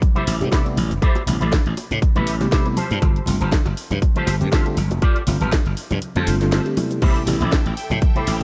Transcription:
0.02 kick, closed hi-hat, shaker
0.15 tine electric piano C3 G3 A3 B3 E4, clean electric guitar E4 G4 A4 C5, closed hi-hat, high conga
0.27 slap bass A1, open hi-hat, high bongo, shaker
0.40 slap bass A2, tine electric piano C3 G3 A3 B3 G4, closed hi-hat, shaker
0.51 clean electric guitar E4 G4 A4 D5, kick, snare, closed hi-hat, high bongo, shaker
0.65 tine electric piano C3 G3 A3 B3 E4, closed hi-hat
0.76 slap bass A1, muted clean electric guitar stroke, open hi-hat, high conga, shaker
0.90 slap bass G1, muted clean electric guitar stroke, closed hi-hat, high bongo, shaker
1.02 clean electric guitar E4 G4 A4 C5, kick, closed hi-hat, shaker
1.15 closed hi-hat, high bongo
1.26 slap bass A1, tine electric piano C3 G3 A3 B3 E4, open hi-hat, low conga, shaker
1.40 slap bass A1, clean electric guitar E4 G4 A4 C5, closed hi-hat, high conga, shaker
1.52 kick, snare, closed hi-hat, high bongo, shaker
1.66 slap bass A1, muted clean electric guitar stroke, closed hi-hat
1.77 open hi-hat, high bongo, shaker
1.91 slap bass A2, closed hi-hat, low conga, shaker
2.02 kick, closed hi-hat, shaker
2.15 slap bass A1, tine electric piano C3 G3 A3 B3 E4, clean electric guitar E4 G4 A4 B4, closed hi-hat, high bongo, high conga
2.27 open hi-hat, shaker
2.40 tine electric piano C3 G3 A3 B3 G4, snare, closed hi-hat, high bongo, shaker
2.52 clean electric guitar E4 G4 A4 C5, kick, snare, closed hi-hat, shaker
2.65 tine electric piano C3 G3 A3 B3 E4, closed hi-hat
2.77 clean electric guitar F4 G4 A4 C5, open hi-hat, high bongo, high conga, shaker
2.91 slap bass G2, closed hi-hat, shaker
3.02 slap bass G1, kick, closed hi-hat, high bongo, shaker
3.16 closed hi-hat
3.26 slap bass G1, tine electric piano D3 G3 A3 C4 F4, open hi-hat, low conga, shaker
3.40 slap bass G1, clean electric guitar F4 G4 A4 C5, closed hi-hat, high bongo, high conga, shaker
3.52 kick, snare, closed hi-hat, shaker
3.66 slap bass G1, muted clean electric guitar stroke, closed hi-hat, high bongo
3.77 open hi-hat, shaker
3.91 slap bass G2, closed hi-hat, high conga, low conga, shaker
4.02 kick, closed hi-hat, high bongo, shaker
4.15 tine electric piano D3 G3 A3 C4 F4, clean electric guitar F4 G4 A4 C5, closed hi-hat, high conga
4.27 slap bass G1, open hi-hat, high bongo, shaker
4.40 slap bass G2, tine electric piano D3 G3 A3 C4 G4, closed hi-hat, shaker
4.52 clean electric guitar F4 G4 A4 C5, kick, snare, closed hi-hat, shaker
4.65 tine electric piano D3 G3 A3 C4 F4, closed hi-hat, high bongo
4.77 slap bass G1, muted clean electric guitar stroke, open hi-hat, high conga, shaker
4.91 slap bass F1, muted clean electric guitar stroke, closed hi-hat, high bongo, shaker
5.01 clean electric guitar F4 G4 A4 D5, kick, closed hi-hat, shaker
5.16 closed hi-hat
5.27 slap bass G1, tine electric piano D3 G3 A3 C4 F4, open hi-hat, high bongo, low conga, shaker
5.41 slap bass G1, clean electric guitar F4 G4 A4 B4, closed hi-hat, high conga, shaker
5.51 kick, snare, closed hi-hat, high bongo, shaker
5.66 slap bass G1, muted clean electric guitar stroke, closed hi-hat
5.77 open hi-hat, shaker
5.91 slap bass G2, closed hi-hat, high bongo, high conga, low conga, shaker
6.02 closed hi-hat, shaker
6.15 slap bass F2, tine electric piano D3 G3 A3 C4 F4, clean electric guitar F4 G4 A4 C5, closed hi-hat, high bongo, high conga
6.27 slap bass G1, tine electric piano D3 G3 A3 C4 F4, open hi-hat, shaker
6.40 tine electric piano D3 G3 A3 C4 F4, snare, closed hi-hat, shaker
6.52 clean electric guitar F4 G4 A4 C5, snare, closed hi-hat, high bongo, shaker
6.65 tine electric piano D3 G3 A3 C4 G4, closed hi-hat
6.76 tine electric piano C3 G3 A3 B3 E4, muted clean electric guitar stroke, open hi-hat, high bongo, high conga, shaker
6.91 muted clean electric guitar stroke, closed hi-hat, shaker
7.02 slap bass A1, clean electric guitar E4 G4 A4 C5, string section A4 E5 G5, kick, closed hi-hat, crash, high bongo, shaker
7.16 closed hi-hat
7.26 slap bass A1, tine electric piano C3 G3 A3 B3 E4, open hi-hat, high bongo, low conga, shaker
7.41 slap bass A1, clean electric guitar E4 G4 A4 C5, closed hi-hat, high conga, shaker
7.52 kick, snare, closed hi-hat, shaker
7.66 slap bass A1, muted clean electric guitar stroke, closed hi-hat, high bongo
7.77 open hi-hat, shaker
7.90 slap bass A2, closed hi-hat, high bongo, high conga, low conga, shaker
8.02 kick, closed hi-hat, shaker
8.15 tine electric piano C3 G3 A3 B3 E4, clean electric guitar E4 G4 A4 C5, closed hi-hat, high conga
8.27 slap bass A1, open hi-hat, high bongo, shaker

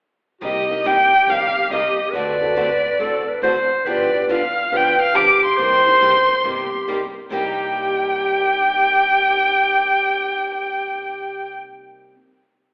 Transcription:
0.40 upright bass C2, steel-string acoustic guitar C3 G3 A#3 D#4 G4, clarinet G4, violin D#5
0.70 steel-string acoustic guitar A#3 D#4 G4
0.84 steel-string acoustic guitar C3 G3 A#3 D#4 G4, violin G5
1.27 upright bass G1, steel-string acoustic guitar C3 G3 A#3 D#4 G4, violin F5
1.72 steel-string acoustic guitar C3 G3 A#3 D#4 G4, violin D#5
2.12 upright bass D2, steel-string acoustic guitar D3 A3 F#4 A4, clarinet B4, violin D5
2.16 steel-string acoustic guitar C4
2.42 steel-string acoustic guitar C4 F#4 A4
2.57 steel-string acoustic guitar D3 A3 C4 F#4 A4
2.99 upright bass A1, steel-string acoustic guitar D3 A3 C4 F#4 A4, clarinet A4
3.29 clarinet B4
3.43 steel-string acoustic guitar D3 A3 C4 F#4 A4, clarinet C5
3.85 upright bass G1, steel-string acoustic guitar D3 F3 B3 D4 G4, clarinet B4, violin D5
4.15 steel-string acoustic guitar B3 D4 G4
4.28 upright bass G1, steel-string acoustic guitar D3 F3 B3 D4 G4, violin F5
4.72 upright bass G#1, steel-string acoustic guitar D3 F3 B3 D4 G4, clarinet B4, violin G5
5.01 violin F5
5.14 upright bass B1, steel-string acoustic guitar D3 F3 B3 D4 G4, clarinet G4, violin D6
5.45 violin C6
5.57 upright bass C2, steel-string acoustic guitar C3 G3 A#3 D#4 G4, clarinet C5
5.87 steel-string acoustic guitar A#3 D#4 G4
6.01 steel-string acoustic guitar C3 G3 A#3 D#4 G4
6.44 upright bass G1, steel-string acoustic guitar C3 G3 A#3 D#4 G4, clarinet G4
6.88 steel-string acoustic guitar C3 G3 A#3 D#4 G4
7.30 upright bass C2, steel-string acoustic guitar C3 G3 A#3 D#4 G4, clarinet G4, violin G5

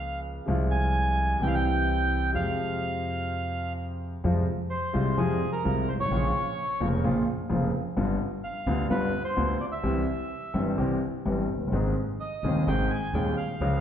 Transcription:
Already playing: grand piano C#2 C#3 F3 A#3 F4, upright bass C#2, bandoneon F5
0.46 upright bass C2, grand piano C2 C3 F3 G#3
0.50 grand piano F4
0.71 bandoneon G#5
1.40 upright bass C2, grand piano C2 C3 E3 G3 E4, bandoneon G5
1.47 bandoneon F5
1.55 bandoneon G5
2.33 upright bass F2, grand piano F2 C3 F3 G#3, bandoneon F5
2.37 grand piano F4
4.24 grand piano F2 C3 F3 G3 G#3 F4, upright bass F2
4.70 bandoneon C5
4.93 grand piano C2 C3 G3 G#3 F4, upright bass C2
5.18 upright bass F2, grand piano F2 C3 F3 G3 G#3 F4, bandoneon G#4
5.53 bandoneon A#4
5.64 grand piano C2 C3 G3 G#3 F4, upright bass C2
5.89 bandoneon C5
5.93 upright bass G1, grand piano G1
5.99 upright bass G#1, grand piano G#1, bandoneon C#5
6.05 upright bass A1, grand piano A1
6.11 upright bass A#1, grand piano A#1 A#2 C#3 F3 A#3 F4
6.80 upright bass F1, grand piano F1 F2 C#3 F3 A#3 F4
7.04 upright bass A#1, grand piano A#1 A#2 C#3 F3 A#3 F4
7.49 grand piano F1 F2 C#3 F3 A#3 F4, upright bass F1
7.96 grand piano G1 G2 D3 G3 B3 F4, upright bass G1
8.44 bandoneon F5
8.66 upright bass D2, grand piano D2 D3 G3 B3 F4
8.90 upright bass G1, grand piano G1 G2 D3 G3 B3 F4, bandoneon B4
9.25 bandoneon C5
9.37 grand piano D2 D3 G3 B3 F4, upright bass D2
9.60 bandoneon D5
9.72 bandoneon E5
9.83 grand piano C2 C3 E3 G3 C4 G4, upright bass C2
10.54 upright bass G1, grand piano G1 G2 E3 G3 C4 G4
10.77 grand piano C2 C3 E3 G3 C4 G4, upright bass C2
11.25 upright bass G1, grand piano G1 G2 E3 G3 C4 G4
11.55 upright bass F1, grand piano F1
11.61 upright bass F#1, grand piano F#1
11.66 upright bass G1, grand piano G1
11.72 upright bass G#1, grand piano G#1 G#2 D#3 G#3 C4 G#4
12.20 bandoneon D#5
12.43 grand piano D#1 D#2 D#3 G#3 C4 G#4, upright bass D#2
12.67 upright bass G#1, grand piano G#1 G#2 D#3 G#3 C4 G#4, bandoneon G5
12.90 bandoneon G#5
13.13 grand piano D#1 D#2 D#3 G#3 C4 G#4, upright bass D#2, bandoneon G5
13.37 bandoneon F5
13.60 upright bass C#2, grand piano C#2 C#3 F3 G#3 C#4 G#4

